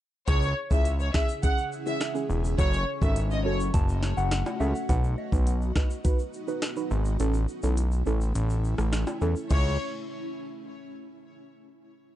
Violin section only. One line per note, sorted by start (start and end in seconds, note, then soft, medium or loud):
0.28 0.48 C#5 loud
0.71 0.81 E5 medium
1.00 1.10 C#5 medium
1.14 1.24 E5 medium
1.43 1.53 F#5 medium
1.86 1.97 E5 medium
2.58 2.79 C#5 loud
3.02 3.12 E5 medium
3.30 3.41 D#5 medium
3.44 3.55 C#5 medium
9.51 9.78 C#5 medium